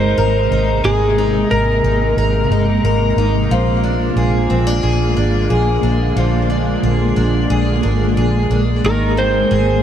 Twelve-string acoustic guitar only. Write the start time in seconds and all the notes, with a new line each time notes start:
Already playing: G#3 D#4 A#4
0.18 A#4
0.52 D#4
0.84 G#3
1.18 D#4
1.51 A#4
1.84 D#4
2.18 A#4
2.52 D#4
2.85 A#4
3.18 D#4
3.51 F3
3.84 D4
4.17 G#4
4.50 C4
4.67 D4
4.83 G#4
5.17 D4
5.50 G#4
5.83 D4
6.17 F3
6.50 D4
6.83 G#4
7.16 D4
7.50 G#4
7.83 D4
8.17 G#4
8.51 D4
8.84 D#3
9.17 C4
9.51 G#4